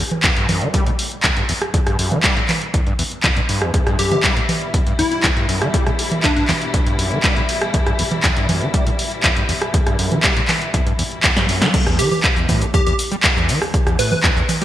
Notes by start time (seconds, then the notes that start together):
0.12 closed hi-hat, low conga
0.23 E2, kick, clap, closed hi-hat
0.36 G2, closed hi-hat
0.49 F#2, open hi-hat, low conga
0.61 E3, closed hi-hat
0.74 G3, kick, closed hi-hat
0.86 A2, closed hi-hat
0.99 open hi-hat
1.12 closed hi-hat
1.23 E2, kick, clap, closed hi-hat
1.36 G2, closed hi-hat
1.49 E2, open hi-hat
1.62 cross-stick, closed hi-hat
1.74 E2, kick, closed hi-hat
1.86 G2, cross-stick, closed hi-hat
1.99 F#2, open hi-hat
2.12 E3, closed hi-hat, low conga
2.23 G3, kick, clap, closed hi-hat
2.36 A2, closed hi-hat
2.48 clap, open hi-hat, low conga
2.62 closed hi-hat
2.74 E2, kick, closed hi-hat
2.87 G2, closed hi-hat
2.99 E2, open hi-hat
3.12 closed hi-hat
3.23 E2, kick, clap, closed hi-hat
3.36 G2, closed hi-hat
3.49 G2, open hi-hat
3.62 E2, cross-stick
3.74 E2 B2 E3 G3 E4, kick, closed hi-hat
3.87 G2, cross-stick, closed hi-hat
3.99 F#2 G4, open hi-hat
4.12 E3 G4, closed hi-hat, low conga
4.23 G3, kick, clap, closed hi-hat
4.37 A2, closed hi-hat
4.49 open hi-hat, low conga
4.62 closed hi-hat
4.74 E2, kick, closed hi-hat
4.87 G2, closed hi-hat
4.99 E2 E4, open hi-hat
5.11 E4, closed hi-hat
5.23 E2, kick, clap, closed hi-hat
5.37 G2, closed hi-hat
5.49 F#2, open hi-hat
5.62 E3, cross-stick, closed hi-hat
5.74 G3, kick, closed hi-hat
5.87 A2, cross-stick, closed hi-hat
5.99 open hi-hat
6.12 closed hi-hat, low conga
6.23 E2 D4, kick, clap, closed hi-hat
6.36 G2 D4, closed hi-hat
6.48 E2, clap, open hi-hat, low conga
6.62 closed hi-hat
6.74 E2, kick, closed hi-hat
6.87 G2, closed hi-hat
6.99 F#2, open hi-hat
7.11 E3, closed hi-hat
7.23 G3, kick, clap, closed hi-hat
7.36 A2, closed hi-hat
7.49 open hi-hat
7.62 cross-stick, closed hi-hat
7.74 E2, kick, closed hi-hat
7.86 G2, cross-stick, closed hi-hat
7.99 E2, open hi-hat
8.12 closed hi-hat, low conga
8.23 E2, kick, clap, closed hi-hat
8.37 G2, closed hi-hat
8.49 F#2, open hi-hat, low conga
8.61 E3, closed hi-hat
8.74 G3, kick, closed hi-hat
8.87 A2, closed hi-hat
8.99 open hi-hat
9.12 closed hi-hat
9.23 E2, kick, clap, closed hi-hat
9.36 G2, closed hi-hat
9.49 E2, open hi-hat
9.62 cross-stick, closed hi-hat
9.74 E2, kick, closed hi-hat
9.87 G2, cross-stick, closed hi-hat
9.99 F#2, open hi-hat
10.12 E3, closed hi-hat, low conga
10.23 G3, kick, clap, closed hi-hat
10.37 A2, closed hi-hat
10.48 clap, open hi-hat, low conga
10.62 closed hi-hat
10.74 E2, kick, closed hi-hat
10.87 G2, closed hi-hat
10.99 E2, open hi-hat
11.12 closed hi-hat
11.23 E2, kick, clap, closed hi-hat
11.37 G2, snare, closed hi-hat
11.49 F#2, open hi-hat
11.62 E3, snare, closed hi-hat
11.74 E2, kick, closed hi-hat, crash, cabasa
11.87 E2, cross-stick, closed hi-hat, cabasa
11.99 E3 G4, open hi-hat, cabasa
12.12 G4, low conga, cabasa
12.23 kick, clap, closed hi-hat, cabasa
12.37 E2, closed hi-hat, cabasa
12.49 A2, kick, open hi-hat, low conga, cabasa
12.62 E2, closed hi-hat, cabasa
12.74 E2 G4, kick, closed hi-hat, cabasa
12.87 E2 G4, closed hi-hat, cabasa
12.99 open hi-hat, cabasa
13.12 G3, closed hi-hat, cabasa
13.23 E2, kick, clap, closed hi-hat, cabasa
13.37 E2, cabasa
13.49 E3, open hi-hat, cabasa
13.62 cross-stick, cabasa
13.74 kick, closed hi-hat, cabasa
13.87 E2, cross-stick, closed hi-hat, cabasa
13.99 A2 B4, open hi-hat, cabasa
14.12 E2 B4, low conga, cabasa
14.23 E2, kick, clap, closed hi-hat, cabasa
14.37 E2, closed hi-hat, cabasa
14.49 open hi-hat, low conga, cabasa
14.62 G3, closed hi-hat